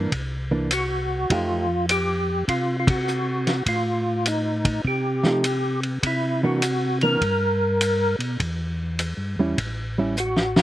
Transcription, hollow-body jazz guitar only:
Already playing: A#3 D4
0.51 E3 A#3 D4
1.31 F3 A3 D#4 G4
5.25 F3 A3 D#4 G4
6.43 E3 A#3 D4
7.03 E3 A#3 D4
9.39 G3 C#4 E4
9.98 G3 C#4 E4

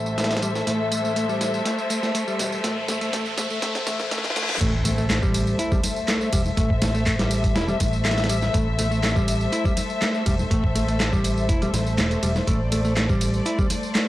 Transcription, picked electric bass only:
Already playing: A1
0.67 A1
2.39 E1
2.64 A1
3.63 E1
3.87 A1
4.12 E1
4.36 E1
4.61 A1
6.33 E1
6.57 A1
7.56 E1
7.80 A1
8.54 A1
10.26 E1
10.51 A1
11.49 E1
11.74 A1
11.98 E1
12.23 E1
12.48 A1

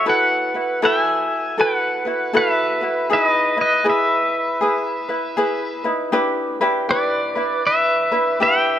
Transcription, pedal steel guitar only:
0.09 B4 F#5
0.85 E5 G#5
1.61 B4 F#5
2.37 B4 E5
3.13 B4 E5
3.25 D#5
3.61 B4 D#5
3.90 B4 E5
6.91 B4 D5
7.67 B4 E5
8.43 E5 G5

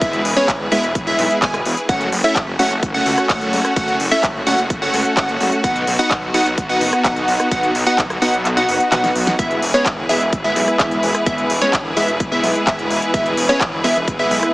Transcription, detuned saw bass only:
0.01 E1
0.25 E1
0.48 E1
0.72 E1
0.83 E1
0.95 E1
1.19 B1
1.42 E1
1.66 E1
1.89 F#1
2.12 F#1
2.36 F#1
2.59 F#1
2.71 F#1
2.83 F#1
3.06 C#2
3.30 F#1
3.53 F#1
3.76 F#1
4.00 F#1
4.23 F#1
4.47 F#1
4.59 F#1
4.70 F#1
4.94 C#2
5.17 F#1
5.41 F#1
5.64 B1
5.87 B1
6.11 B1
6.34 B1
6.46 B1
6.58 B1
6.81 F#1
7.05 B1
7.28 B1
7.51 B1
7.75 B1
7.98 B1
8.22 B1
8.34 B1
8.45 B1
8.69 F#1
8.92 B1
9.15 B1
9.39 E1
9.62 E1
9.86 E1
10.09 E1
10.21 E1
10.33 E1
10.56 B1
10.80 E1
11.03 E1
11.26 E1
11.50 E1
11.73 E1
11.97 E1
12.08 E1
12.20 E1
12.44 B1
12.67 E1
12.90 E1
13.14 E1
13.37 E1
13.61 E1
13.84 E1
13.96 E1
14.08 E1
14.31 B1

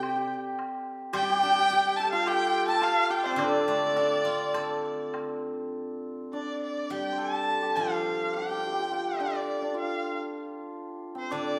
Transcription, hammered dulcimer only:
Already playing: C5 D5
0.01 G4
0.09 G4
0.16 G4
1.13 G4
1.22 G4
1.30 G4
1.37 G4
1.43 G4
1.51 G4
1.58 G4
1.73 G4
2.00 A4
2.13 F4
2.27 G4
2.68 A4
2.82 F4
3.10 G4
3.26 C4
3.32 C4
3.39 D4
6.33 D4
6.91 G4
7.12 C5
7.18 A4
7.62 G4
7.79 F4
8.37 G4
8.42 G4
8.50 G4
8.58 G4
8.67 G4
8.72 G4
8.79 G4
8.92 F4
9.14 F4
9.20 D4
9.62 D4
9.74 F4
11.15 C4
11.31 D4

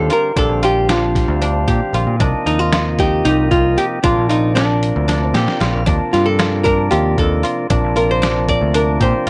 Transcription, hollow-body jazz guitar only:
Already playing: A4
0.13 A#4
0.39 A4
0.65 G4
0.90 F4
2.46 D#4
2.59 F4
3.00 G4
3.25 D#4
3.51 F4
3.78 G4
4.04 F4
4.29 D#4
4.55 D4
5.26 C4
6.13 F4
6.26 A4
6.64 A#4
6.91 G4
7.19 A4
7.97 A#4
8.11 C5
8.49 D5
8.75 A#4
9.02 C5

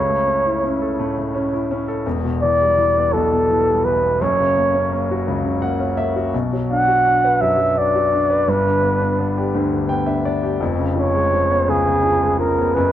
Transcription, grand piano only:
Already playing: C#2 C#3
0.10 A3
0.27 C#4
0.46 E4
0.64 C#4
0.82 A4
0.99 A2 A3
1.18 A3
1.35 C#4
1.53 E4
1.71 C#4
1.88 A4
2.07 E1 E2
2.25 B2
2.44 E3
2.62 G3
2.78 E3
2.97 B3
3.14 B1 B2
3.33 B2
3.49 E3
3.69 G3
3.85 E3
4.02 B3
4.22 F#1 F#2
4.39 C#3
4.57 A#3
4.74 C#4
4.92 A#3
5.11 F#4
5.28 C#2 C#3
5.45 C#3
5.62 A#3 F#5
5.80 C#4
5.97 A#3 E5
6.16 F#4
6.34 B1 B2
6.53 F#3
6.71 D4
6.87 F#4
7.07 D4
7.24 B4
7.41 F#2 F#3
7.57 F#3
7.76 D4
7.95 F#4
8.12 D4
8.30 B4
8.47 G1 G2
8.65 D3
8.82 B3
9.01 D4
9.19 B3
9.37 G4
9.54 D2 D3
9.73 D3
9.89 B3 G5
10.07 D4 E5
10.26 B3 D5
10.43 G4
10.60 F1 F2
10.79 C#3
10.96 F3
11.15 G#3
11.33 F3
11.50 B3
11.68 C#2 C#3
11.86 C#3
12.04 F3
12.22 G#3
12.39 F3
12.58 B3
12.76 F#1 F#2

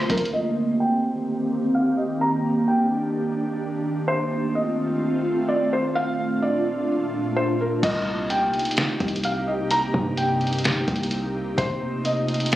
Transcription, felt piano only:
0.10 A#4
0.33 D#5
0.80 G5
1.75 F5
1.97 D#5
2.21 A#5
2.68 G5
4.08 C5
4.55 D#5
5.49 D5
5.73 C5
5.95 F5
6.42 D5
7.36 C5
7.61 A#4
7.83 D#5
8.30 G5
9.25 F5
9.47 D#5
9.71 A#5
10.18 G5
11.58 C5
12.05 D#5

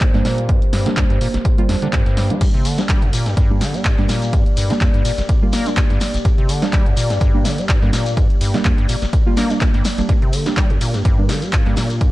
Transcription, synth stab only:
0.14 G3 A#3 D4
0.86 G3 A#3 D4
1.58 G3 A#3 F4
1.69 G3 A#3 D4
1.82 G3 A#3 D4
2.30 G3 A#3 D4
2.78 G3 A#3 D4
3.50 G3 A#3 D4
3.98 G3 A#3 D4
4.70 G3 A#3 D4
5.42 G3 A#3 F4
5.66 G3 A#3 D4
6.62 G3 A#3 D4
7.34 G3 A#3 D4
7.82 G3 A#3 D4
8.54 G3 A#3 D4
9.26 G3 A#3 F4
9.37 G3 A#3 D4
9.50 G3 A#3 D4
9.98 G3 A#3 D4
10.46 G3 A#3 D4
11.18 G3 A#3 D4
11.66 G3 A#3 D4

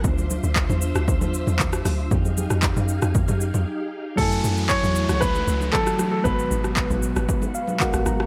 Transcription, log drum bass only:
0.04 D2
0.44 D2
0.69 E2
0.95 D2
1.08 D2
1.21 E2
1.47 E2
1.86 D2
2.11 F2
2.51 F2
2.77 F#2
3.02 F2
3.15 F2
3.28 F#2
3.54 F2
4.18 F#2
4.44 F#2
4.83 E2
5.09 C#2
5.47 C#2
6.25 G#1
6.51 G#1
6.90 A1
7.16 G#1
7.94 A1
8.06 G#1

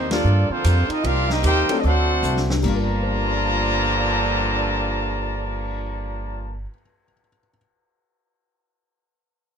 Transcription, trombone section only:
Already playing: D#3 G3 C4
0.10 F3 A#3 D4
0.50 D3 F3 C4
0.88 D#4
1.04 F4
1.29 G3 A#3 D#4
1.42 A#3 D#4 G4
1.85 A3 C4 F#4
2.63 G2 D3 F3 A#3

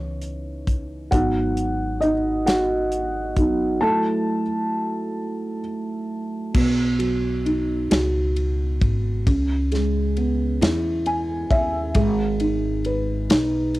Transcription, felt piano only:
Already playing: E3 B3 C#4 D#4 C#5
1.11 F#3 B3 D#4 F#4 F#5
2.00 D#4 D#5
2.46 F#4 F#5
3.37 F#3 B3 D#4
3.81 F#3 A3 E4 A4 A5
6.54 B2
6.99 F#3
7.46 D#4
7.90 F#4
9.27 C#3
9.72 G#3
10.17 B3
10.62 E4
11.07 G#5
11.50 E5
11.96 G#3
12.41 D#4
12.86 B4
13.30 D#4

